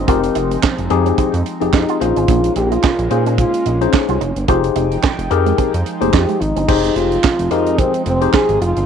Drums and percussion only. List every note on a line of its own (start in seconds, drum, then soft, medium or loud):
0.08 kick loud
0.08 closed hi-hat loud
0.24 closed hi-hat medium
0.35 closed hi-hat medium
0.51 closed hi-hat soft
0.63 kick loud
0.63 snare loud
0.63 clap loud
0.78 closed hi-hat medium
0.90 closed hi-hat medium
1.06 closed hi-hat medium
1.18 kick loud
1.18 closed hi-hat medium
1.34 closed hi-hat medium
1.46 closed hi-hat medium
1.61 closed hi-hat soft
1.73 kick loud
1.73 snare loud
1.73 clap loud
1.89 closed hi-hat soft
2.01 closed hi-hat medium
2.16 closed hi-hat medium
2.28 kick loud
2.28 closed hi-hat loud
2.44 closed hi-hat medium
2.56 closed hi-hat medium
2.72 closed hi-hat medium
2.84 kick loud
2.84 snare loud
2.84 clap loud
2.99 closed hi-hat medium
3.11 closed hi-hat medium
3.26 closed hi-hat medium
3.38 kick loud
3.38 closed hi-hat medium
3.54 closed hi-hat medium
3.66 closed hi-hat medium
3.81 closed hi-hat soft
3.93 kick loud
3.93 snare loud
3.93 clap medium
4.09 closed hi-hat soft
4.21 closed hi-hat medium
4.36 closed hi-hat medium
4.48 kick loud
4.48 closed hi-hat medium
4.64 closed hi-hat medium
4.76 closed hi-hat medium
4.92 closed hi-hat soft
5.04 kick loud
5.04 snare loud
5.04 clap loud
5.19 closed hi-hat medium
5.31 closed hi-hat medium
5.46 closed hi-hat medium
5.58 kick loud
5.58 closed hi-hat medium
5.74 closed hi-hat medium
5.86 closed hi-hat medium
6.02 closed hi-hat medium
6.13 kick loud
6.13 snare loud
6.13 clap loud
6.29 closed hi-hat soft
6.42 closed hi-hat medium
6.57 closed hi-hat medium
6.69 kick loud
6.69 crash loud
6.84 closed hi-hat medium
6.96 closed hi-hat medium
7.12 closed hi-hat soft
7.24 kick loud
7.24 snare loud
7.24 clap loud
7.39 closed hi-hat medium
7.51 closed hi-hat medium
7.67 closed hi-hat medium
7.78 kick loud
7.78 closed hi-hat medium
7.94 closed hi-hat medium
8.06 closed hi-hat medium
8.22 closed hi-hat medium
8.34 kick loud
8.34 snare loud
8.34 clap loud
8.49 closed hi-hat soft
8.62 closed hi-hat medium
8.77 closed hi-hat medium